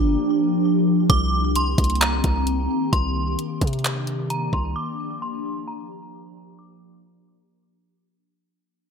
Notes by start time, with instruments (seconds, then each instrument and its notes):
Already playing: 808-style bass G1, ambient pad F3 A#3 D4 G4
1.10 808-style bass C2, ambient pad D#3 A#3 C4 G4, synth bell D6, kick, closed hi-hat
1.56 synth bell C6, closed hi-hat
1.78 808-style bass C2, kick, closed hi-hat
1.84 closed hi-hat
1.90 closed hi-hat
1.95 closed hi-hat
2.01 synth bell A#5, clap, closed hi-hat
2.24 808-style bass C2, kick, closed hi-hat
2.47 closed hi-hat
2.93 808-style bass C2, ambient pad D4, synth bell C6, kick, closed hi-hat
3.39 closed hi-hat
3.61 808-style bass C3, kick, closed hi-hat
3.67 closed hi-hat
3.73 closed hi-hat
3.79 closed hi-hat
3.85 clap, closed hi-hat
4.07 closed hi-hat
4.30 synth bell A#5, closed hi-hat
4.53 808-style bass C2, synth bell C6, kick
4.76 ambient pad F3, synth bell D6
5.22 synth bell C6
5.68 synth bell A#5
6.59 synth bell D6